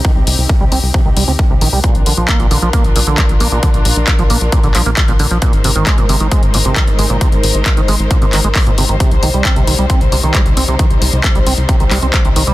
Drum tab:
HH |--o---o---o---o-|xxoxxxoxxxoxxxox|xxoxxxoxxxoxxxox|xxoxxxoxxxoxxxox|
CP |----------------|----x-------x---|----x-----x-x---|----x-------x---|
BD |o---o---o---o---|o---o---o---o---|o---o---o---o---|o---o---o---o---|

HH |xxoxxxoxxxoxoxox|xxoxxxoxxxoxxxox|xxoxxxoxxxoxxxox|
CP |----x-----x-x---|----x-------x---|----x-----x-x---|
BD |o---o---o---o---|o---o---o---o---|o---o---o---o---|